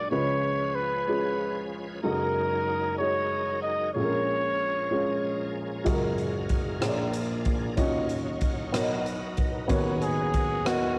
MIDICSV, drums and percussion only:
0, 0, Header, 1, 2, 480
1, 0, Start_track
1, 0, Key_signature, 6, "major"
1, 0, Tempo, 639659
1, 77, Time_signature, 6, 3, 24, 8
1, 8245, End_track
2, 0, Start_track
2, 0, Title_t, "Drums"
2, 4396, Note_on_c, 9, 42, 57
2, 4400, Note_on_c, 9, 36, 81
2, 4471, Note_off_c, 9, 42, 0
2, 4475, Note_off_c, 9, 36, 0
2, 4637, Note_on_c, 9, 42, 29
2, 4712, Note_off_c, 9, 42, 0
2, 4872, Note_on_c, 9, 42, 37
2, 4877, Note_on_c, 9, 36, 60
2, 4947, Note_off_c, 9, 42, 0
2, 4952, Note_off_c, 9, 36, 0
2, 5116, Note_on_c, 9, 42, 65
2, 5117, Note_on_c, 9, 37, 73
2, 5191, Note_off_c, 9, 42, 0
2, 5192, Note_off_c, 9, 37, 0
2, 5354, Note_on_c, 9, 42, 43
2, 5429, Note_off_c, 9, 42, 0
2, 5591, Note_on_c, 9, 42, 32
2, 5597, Note_on_c, 9, 36, 64
2, 5666, Note_off_c, 9, 42, 0
2, 5672, Note_off_c, 9, 36, 0
2, 5833, Note_on_c, 9, 42, 56
2, 5836, Note_on_c, 9, 36, 83
2, 5908, Note_off_c, 9, 42, 0
2, 5911, Note_off_c, 9, 36, 0
2, 6072, Note_on_c, 9, 42, 31
2, 6147, Note_off_c, 9, 42, 0
2, 6311, Note_on_c, 9, 42, 38
2, 6317, Note_on_c, 9, 36, 63
2, 6386, Note_off_c, 9, 42, 0
2, 6392, Note_off_c, 9, 36, 0
2, 6558, Note_on_c, 9, 42, 72
2, 6559, Note_on_c, 9, 37, 72
2, 6633, Note_off_c, 9, 42, 0
2, 6634, Note_off_c, 9, 37, 0
2, 6798, Note_on_c, 9, 42, 40
2, 6873, Note_off_c, 9, 42, 0
2, 7030, Note_on_c, 9, 42, 35
2, 7039, Note_on_c, 9, 36, 66
2, 7105, Note_off_c, 9, 42, 0
2, 7114, Note_off_c, 9, 36, 0
2, 7273, Note_on_c, 9, 42, 55
2, 7278, Note_on_c, 9, 36, 82
2, 7348, Note_off_c, 9, 42, 0
2, 7353, Note_off_c, 9, 36, 0
2, 7514, Note_on_c, 9, 42, 31
2, 7589, Note_off_c, 9, 42, 0
2, 7756, Note_on_c, 9, 42, 42
2, 7760, Note_on_c, 9, 36, 65
2, 7831, Note_off_c, 9, 42, 0
2, 7835, Note_off_c, 9, 36, 0
2, 7999, Note_on_c, 9, 42, 64
2, 8000, Note_on_c, 9, 37, 79
2, 8074, Note_off_c, 9, 42, 0
2, 8075, Note_off_c, 9, 37, 0
2, 8245, End_track
0, 0, End_of_file